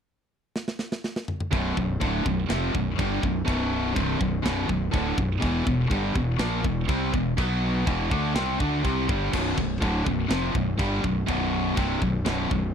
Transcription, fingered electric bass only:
1.52 1.75 B0 loud
1.77 1.99 B0 medium
2.01 2.24 D1 medium
2.26 2.48 B0 medium
2.50 2.72 F1 medium
2.75 2.97 B0 medium
2.99 3.21 G1 medium
3.23 3.45 B0 medium
3.47 3.93 B0 loud
3.96 4.19 C1 loud
4.21 4.43 B0 medium
4.45 4.67 B0 medium
4.69 4.92 B0 medium
4.93 5.16 D1 medium
5.18 5.40 B0 medium
5.42 5.65 E1 loud
5.67 5.89 E1 medium
5.90 6.13 G1 loud
6.15 6.38 E1 medium
6.39 6.62 A#1 medium
6.64 6.87 E1 medium
6.88 7.11 C2 medium
7.13 7.36 E1 medium
7.38 7.83 B1 loud
7.87 8.09 E1 medium
8.11 8.34 D2 loud
8.35 8.57 C2 medium
8.60 8.82 D2 loud
8.84 9.07 C2 medium
9.09 9.31 G1 medium
9.33 9.56 B0 loud
9.58 9.80 B0 medium
9.81 10.04 D1 medium
10.07 10.29 B0 medium
10.29 10.52 F1 medium
10.55 10.77 B0 medium
10.79 11.02 G1 medium
11.04 11.27 B0 medium
11.29 11.74 B0 loud
11.77 12.00 C1 medium
12.02 12.24 B0 medium
12.26 12.49 B0 medium
12.51 12.74 B0 medium

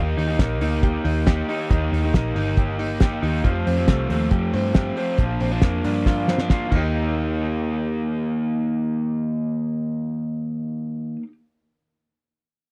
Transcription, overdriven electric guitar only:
0.00 0.28 D#3 medium
0.00 0.29 A#3 medium
0.00 0.28 D#4 medium
0.00 0.26 G4 loud
0.28 0.60 A#3 soft
0.28 0.61 D#4 medium
0.28 0.61 G4 medium
0.62 1.27 A#3 medium
0.62 1.27 D#4 medium
0.62 1.28 G4 medium
1.27 1.47 D#3 medium
1.27 1.48 A#3 medium
1.27 1.48 D#4 medium
1.27 1.49 G4 medium
1.49 1.69 D#3 medium
1.49 1.70 A#3 medium
1.49 1.71 D#4 medium
1.49 1.71 G4 medium
1.71 2.03 D#3 medium
1.71 2.03 A#3 medium
1.71 2.04 D#4 loud
1.71 2.02 G4 loud
2.03 2.35 A#3 soft
2.03 2.36 D#4 medium
2.03 2.36 G4 medium
2.36 3.00 D#3 medium
2.36 3.01 A#3 medium
2.36 3.02 D#4 medium
2.36 3.03 G4 medium
3.01 3.21 D#3 medium
3.01 3.22 A#3 medium
3.01 3.23 D#4 medium
3.01 3.23 G4 medium
3.23 3.44 D#3 medium
3.23 3.44 A#3 medium
3.23 3.45 D#4 medium
3.23 3.44 G4 medium
3.44 3.77 F3 medium
3.44 3.77 A3 medium
3.44 3.77 C4 medium
3.44 3.76 G4 medium
3.77 4.09 A3 soft
3.77 4.10 C4 medium
3.77 4.10 G4 medium
4.10 4.74 F3 medium
4.10 4.75 A3 medium
4.10 4.75 C4 medium
4.10 4.76 G4 medium
4.75 4.96 F3 medium
4.75 4.96 A3 medium
4.75 4.97 C4 medium
4.75 4.97 G4 medium
4.97 5.19 F3 medium
4.97 5.19 A3 medium
4.97 5.19 C4 medium
4.97 5.20 G4 medium
5.19 5.52 A#2 medium
5.19 5.52 F3 medium
5.19 5.52 A#3 medium
5.19 5.52 D4 medium
5.19 5.51 F4 medium
5.52 5.84 A#3 soft
5.52 5.85 D4 medium
5.52 5.84 F4 medium
5.84 6.48 F3 medium
5.84 6.50 A#3 medium
5.84 6.49 D4 medium
5.84 6.50 F4 medium
6.49 6.66 F3 medium
6.49 6.72 A#3 medium
6.49 6.72 D4 medium
6.49 6.72 F4 medium
6.66 11.16 D#3 medium
6.73 11.22 A#3 medium
6.78 11.28 D#4 medium
6.83 11.32 G4 medium

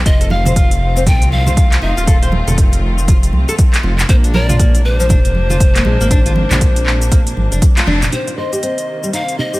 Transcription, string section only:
0.06 4.05 D#3 medium
0.06 4.05 A3 medium
0.06 4.05 C4 medium
0.06 4.05 F4 medium
4.09 8.08 C3 medium
4.09 8.08 G#3 medium
4.09 8.08 A#3 medium
4.09 8.08 D4 medium
8.12 9.60 C3 medium
8.12 9.60 D#3 medium
8.12 9.60 A#3 medium
8.12 9.60 C5 medium

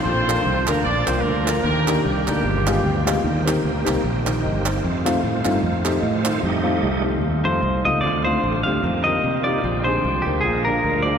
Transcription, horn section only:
0.03 0.62 C4 medium
0.03 0.80 F4 medium
0.03 0.80 A4 medium
0.03 0.62 C5 loud
0.68 0.83 A#3 medium
0.68 0.83 A#4 medium
0.83 1.07 D4 medium
0.83 1.21 F4 medium
0.83 1.61 A4 medium
0.83 1.07 D5 loud
1.04 1.23 C4 medium
1.04 1.23 C5 medium
1.20 1.61 A#3 medium
1.20 1.61 D4 medium
1.20 1.60 F4 medium
1.20 1.61 A#4 loud
1.62 2.00 A#3 medium
1.62 2.03 D4 medium
1.62 2.01 G4 medium
1.62 2.00 A#4 loud
2.02 3.01 G3 medium
2.02 3.02 A#3 medium
2.02 3.03 D4 medium
2.02 3.01 G4 medium

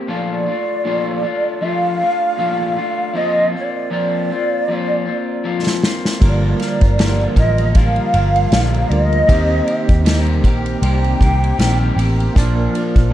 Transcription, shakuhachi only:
0.09 1.64 D5 loud
1.62 3.17 F5 loud
3.16 3.54 D#5 loud
3.55 5.81 D5 loud
6.23 7.40 D5 loud
7.38 7.77 D#5 loud
7.75 8.90 F5 loud
8.89 9.00 D5 loud
9.00 10.17 D#5 loud
10.42 12.38 G5 loud
12.37 13.13 A#4 medium

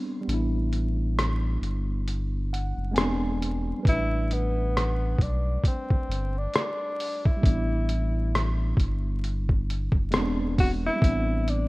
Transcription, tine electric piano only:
0.00 0.20 G3 soft
0.00 0.24 B3 soft
0.00 0.29 C4 soft
0.00 0.28 D4 soft
0.21 2.89 G3 medium
0.25 2.91 B3 medium
0.30 2.93 D4 medium
0.34 2.95 E4 medium
2.53 2.94 F#5 medium
2.91 3.83 G#3 medium
2.91 3.84 B3 medium
2.91 3.81 G#5 medium
2.96 3.85 C4 medium
2.96 3.86 D4 medium
3.79 7.36 G3 medium
3.83 7.38 B4 medium
3.87 7.41 A3 medium
3.92 7.43 D4 medium
7.37 10.05 G3 medium
7.41 10.07 B3 medium
7.46 10.09 D4 medium
7.50 10.11 E4 medium
10.11 11.01 G#3 medium
10.11 10.98 B3 medium
10.15 11.02 C4 medium
10.15 11.04 D4 medium
10.95 11.68 G3 medium
10.95 11.68 B3 medium
11.04 11.68 C4 medium
11.08 11.68 D4 medium

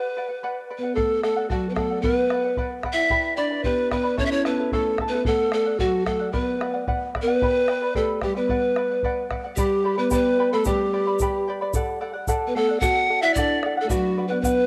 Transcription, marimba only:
0.79 0.95 B3 medium
0.96 1.21 A3 medium
1.23 1.48 A3 medium
1.50 1.69 F#3 medium
1.70 1.77 B3 medium
1.77 2.04 A3 medium
2.02 2.79 B3 medium
2.94 3.35 E4 medium
3.38 3.63 D4 medium
3.65 3.92 B3 medium
3.93 4.17 B3 medium
4.20 4.26 C#4 medium
4.27 4.33 E4 medium
4.32 4.45 C#4 medium
4.47 4.71 B3 medium
4.73 4.98 A3 medium
5.10 5.26 B3 medium
5.26 5.51 A3 medium
5.52 5.78 A3 medium
5.81 6.07 F#3 medium
6.08 6.34 A3 medium
6.34 6.84 B3 medium
7.23 7.91 B3 medium
7.96 8.22 A3 medium
8.25 8.36 G3 medium
8.37 9.27 B3 medium
9.58 9.95 G3 medium
9.98 10.11 B3 medium
10.12 10.49 B3 medium
10.54 10.65 A3 medium
10.67 11.47 G3 medium
12.47 12.53 B3 medium
12.55 12.81 A3 medium
12.83 13.22 F#4 medium
13.22 13.35 E4 medium
13.37 13.76 D4 medium
13.84 13.90 A3 medium
13.91 14.30 F#3 medium
14.31 14.42 B3 medium
14.43 14.67 B3 medium

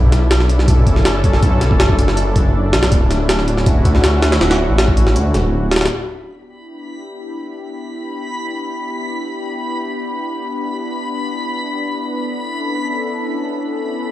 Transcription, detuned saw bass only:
0.00 0.85 B1 loud
0.87 1.41 F#1 loud
1.43 1.69 B1 loud
1.71 2.75 F#1 loud
2.73 2.90 B1 loud
2.92 3.84 D1 loud
3.85 4.39 D2 medium
4.41 4.68 D1 loud
4.69 5.17 A1 loud
5.16 5.36 D2 medium
5.35 5.89 D1 loud

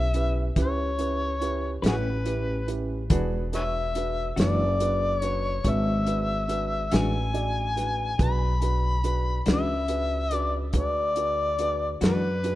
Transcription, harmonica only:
0.00 0.44 E5 medium
0.61 1.82 C#5 medium
1.88 1.96 F#4 soft
1.88 1.95 G#4 soft
1.88 2.77 B4 medium
3.55 3.62 B4 medium
3.55 3.63 C#5 medium
3.55 4.35 E5 medium
4.41 5.21 D5 medium
5.21 5.70 C#5 medium
5.69 6.97 E5 medium
6.95 8.21 G#5 medium
8.23 9.44 B5 loud
9.52 10.34 E5 medium
10.34 10.60 D5 medium
10.77 11.99 D5 medium
12.05 12.55 B4 medium

